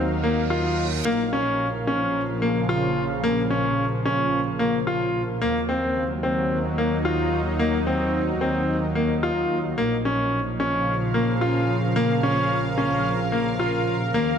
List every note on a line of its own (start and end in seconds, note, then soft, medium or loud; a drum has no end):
0.00 1.03 D#2 medium
0.00 1.05 F#3 medium
0.00 2.43 D#4 medium
0.00 9.78 A#4 medium
0.00 9.78 F5 medium
0.00 reverse cymbal medium
0.24 0.40 A#3 medium
0.50 0.83 F4 medium
1.05 5.39 A#1 medium
1.05 5.42 F3 medium
1.05 1.22 A#3 loud
1.33 1.66 C#4 medium
1.52 6.58 C#3 medium
1.87 2.20 C#4 medium
2.42 2.58 A#3 medium
2.69 3.02 F4 medium
3.24 3.40 A#3 loud
3.50 3.84 C#4 medium
4.05 4.38 C#4 medium
4.59 4.76 A#3 medium
4.87 5.20 F4 medium
5.42 9.76 D#2 loud
5.42 9.78 F#3 loud
5.42 5.58 A#3 loud
5.69 6.02 C4 medium
5.97 11.32 D#4 medium
6.23 6.56 C4 medium
6.78 6.95 A#3 medium
7.05 7.38 F4 medium
7.59 7.76 A#3 loud
7.87 8.20 C4 medium
8.41 8.74 C4 medium
8.95 9.12 A#3 medium
9.23 9.56 F4 medium
9.78 14.12 A#1 medium
9.78 14.14 F3 medium
9.78 9.94 A#3 medium
10.01 14.38 F5 medium
10.05 10.38 C#4 medium
10.27 14.38 C#3 medium
10.27 14.38 A#4 medium
10.60 10.93 C#4 medium
11.14 11.31 A#3 medium
11.41 11.74 F4 medium
11.96 12.13 A#3 loud
12.23 12.56 C#4 medium
12.78 13.11 C#4 medium
13.32 13.49 A#3 medium
13.60 13.93 F4 medium
14.14 14.38 D#2 medium
14.14 14.38 F#3 medium
14.14 14.31 A#3 medium